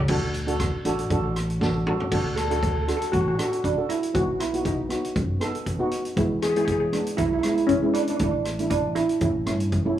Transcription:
0.08 D2 D4 F#4 A4, kick, crash
0.34 closed hi-hat
0.47 D4 F#4 A4, closed hi-hat
0.60 kick, cross-stick, closed hi-hat
0.85 A1 D4 F#4 A4, closed hi-hat
0.99 closed hi-hat
1.10 A1 D4 F#4 A4, kick, closed hi-hat
1.36 cross-stick, closed hi-hat
1.50 closed hi-hat
1.61 D4 F#4 A4, kick, snare
1.86 D4 F#4 A4, mid tom
2.00 floor tom
2.11 D2 D4 F#4 A4, kick, crash
2.36 A4, cross-stick, closed hi-hat
2.45 A4
2.50 D4 F#4 A4, closed hi-hat
2.59 A4, kick, closed hi-hat
2.67 A4
2.75 A4
2.82 A4
2.87 D4 F#4 A4, cross-stick, closed hi-hat
2.97 A4
3.02 closed hi-hat
3.12 A1 F#4, kick, closed hi-hat
3.21 F#4
3.28 F#4
3.35 D4 F#4, cross-stick, closed hi-hat
3.39 A4
3.45 F#4
3.52 F#4, closed hi-hat
3.64 D4, kick, closed hi-hat
3.77 D4 F#4 A4
3.89 E4, closed hi-hat
4.03 closed hi-hat
4.14 B1 B3 D#4 F#4, kick, closed hi-hat
4.40 E4, cross-stick, closed hi-hat
4.53 B3 D#4 F#4, closed hi-hat
4.65 D#4, kick, closed hi-hat
4.89 B3 D#4 F#4, cross-stick, closed hi-hat
5.04 closed hi-hat
5.16 F#2, kick, closed hi-hat
5.40 B3 D#4 A4, cross-stick, closed hi-hat
5.55 closed hi-hat
5.66 kick, closed hi-hat
5.79 B3 D#4 F#4
5.91 closed hi-hat
6.05 closed hi-hat
6.16 E2 G#3 B3 E4, kick, closed hi-hat
6.42 G#4, cross-stick, closed hi-hat
6.49 G#4
6.56 G#3 B3 E4 G#4, closed hi-hat
6.65 G#4, kick, closed hi-hat
6.72 G#4
6.80 G#4
6.92 G#3 B3 D4, cross-stick, closed hi-hat
7.06 closed hi-hat
7.17 B1 E4, kick, closed hi-hat
7.26 E4
7.33 E4
7.39 E4
7.43 G#3 B3 E4, cross-stick, closed hi-hat
7.47 E4
7.56 E4, closed hi-hat
7.67 C#4, kick, closed hi-hat
7.82 G#3 B3 E4
7.94 D4, closed hi-hat
8.02 D4
8.07 D4, closed hi-hat
8.16 A1 A3 D4, kick, closed hi-hat
8.21 D4 E4
8.31 D4
8.45 cross-stick, closed hi-hat
8.59 A3 D4 E4, closed hi-hat
8.70 D4, kick, closed hi-hat
8.95 A3 D4 E4, cross-stick, closed hi-hat
9.09 closed hi-hat
9.20 A1 A3 C#4 E4, kick, closed hi-hat
9.46 G2 A3 C#4 E4, cross-stick, closed hi-hat
9.60 closed hi-hat
9.72 F#2, kick, closed hi-hat
9.85 A3 C#4 E4

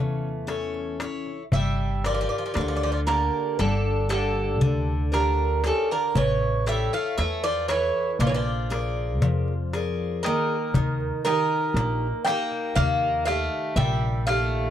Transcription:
Already playing: E2 E3 A3 C#4 A4 C#5 F5
0.47 C#4 A4 C#5, darbuka tek
0.74 darbuka tek
1.00 E4 A4 C#5, darbuka tek
1.26 darbuka tek
1.52 G1 G3 E5, darbuka dum
2.04 F3 G4 A#4 D5, darbuka tek
2.14 F3 D5
2.21 F3 D5
2.29 F3 D5
2.38 F3 D5
2.46 F3 D5
2.54 D2 D3 F3 D5, darbuka tek
2.60 F3 D5
2.68 F3 D5
2.75 F3 D5
2.83 F3 D5
2.92 F3 D5
3.07 D3 A#3 G4 A#4 D5, darbuka tek
3.59 G1 D3 G3 A4, darbuka tek
4.09 D3 A#3 G4 A4 D5, darbuka tek
4.61 D2 D3, darbuka dum
5.12 D3 G4 A#4 D5, darbuka tek
5.39 darbuka tek
5.64 C#3 G4 A4 A#4 D5, darbuka tek
5.90 D3 A#4, darbuka tek
6.15 A1 E3 A3 C#5, darbuka dum
6.42 darbuka tek
6.66 G3 E4 A4 C#5 E5, darbuka tek
6.93 A3 F5
7.18 E2 E3 A3 E5, darbuka tek
7.44 F3 D5
7.68 E3 E4 A4 C#5, darbuka tek
8.19 A#1 F3 A#3 D5, darbuka tek, darbuka dum
8.27 E3 C#5
8.34 F3 D5
8.46 darbuka tek
8.70 G#4 A#4 D5, darbuka tek
8.97 darbuka tek
9.22 F2 F3, darbuka dum
9.48 darbuka tek
9.73 G#4 A#4 D5, darbuka tek
10.23 D#3 A#3 A#4, darbuka tek
10.74 D#2 D#3, darbuka dum
11.00 darbuka tek
11.25 D#3 D#4 G4 A#4, darbuka tek
11.74 A#1 A#3, darbuka tek
12.25 A#3 D#4 G4 A#4 G5, darbuka tek
12.52 darbuka tek
12.75 D#2 D#3 A#3 F5, darbuka tek, darbuka dum
13.01 darbuka tek
13.25 A3 G4 F5, darbuka tek
13.76 A#1 A#2 G3 E5, darbuka dum
14.27 D#3 A3 G4 F5, darbuka tek

